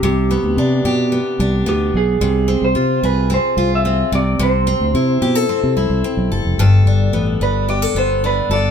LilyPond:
<<
  \new Staff \with { instrumentName = "Electric slide guitar" } { \time 4/4 \key g \mixolydian \tempo 4 = 110 g'2. g'8 aes'8~ | aes'8. c''8. b'8 c''8. e''8. d''8 | c''2. r4 | r4. b'8 d''8 c''8 b'8 d''8 | }
  \new Staff \with { instrumentName = "Steel-string acoustic guitar" } { \time 4/4 \key g \mixolydian c8 b8 d'8 g'8 b8 d'8 b4 | c8 c'8 f'8 aes'8 c'8 f'8 c'8 c8 | c8 c'8 e'8 g'16 a'16 c'8 e'8 c'8 a'8 | <g, a'>8 d'8 b8 d'8 g'16 a'16 b8 d'8 a'8 | }
  \new Staff \with { instrumentName = "Fingered electric bass" } { \clef bass \time 4/4 \key g \mixolydian c,8. d,16 c8 b,8. r16 c,8 d,8 b,,8 | c,8. c,16 c8 c,8. r16 c,4 c,8 | c,8. d,16 c8 b,8 r16 c16 c,16 c,16 r16 b,,16 g,,16 f,,16 | g,,8 g,,8 a,,8 g,,4 g,,4 g,,8 | }
>>